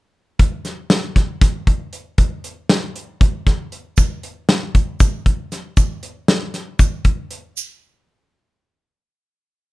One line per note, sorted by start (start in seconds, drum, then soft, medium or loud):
0.39 kick medium
0.39 closed hi-hat medium
0.65 snare soft
0.65 closed hi-hat medium
0.90 snare loud
0.90 closed hi-hat medium
1.16 kick medium
1.16 snare soft
1.16 closed hi-hat medium
1.41 kick loud
1.41 snare soft
1.41 closed hi-hat medium
1.67 kick medium
1.67 closed hi-hat medium
1.93 closed hi-hat medium
2.18 kick medium
2.18 closed hi-hat medium
2.44 closed hi-hat medium
2.69 snare loud
2.69 closed hi-hat medium
2.96 closed hi-hat medium
3.21 kick loud
3.21 closed hi-hat medium
3.47 kick medium
3.47 snare soft
3.47 closed hi-hat soft
3.72 closed hi-hat soft
3.97 kick medium
3.97 closed hi-hat medium
3.97 shaker medium
4.23 closed hi-hat medium
4.49 snare loud
4.49 closed hi-hat medium
4.75 kick medium
4.75 closed hi-hat medium
4.75 shaker soft
5.00 kick loud
5.00 closed hi-hat medium
5.00 shaker medium
5.26 kick medium
5.26 closed hi-hat medium
5.52 snare soft
5.52 closed hi-hat medium
5.52 shaker soft
5.77 kick medium
5.77 closed hi-hat medium
5.77 shaker soft
6.03 closed hi-hat medium
6.03 shaker soft
6.28 snare loud
6.28 closed hi-hat medium
6.28 shaker soft
6.54 snare soft
6.54 closed hi-hat medium
6.79 kick medium
6.79 closed hi-hat medium
6.79 shaker medium
7.05 kick medium
7.05 closed hi-hat medium
7.31 closed hi-hat medium
7.57 shaker medium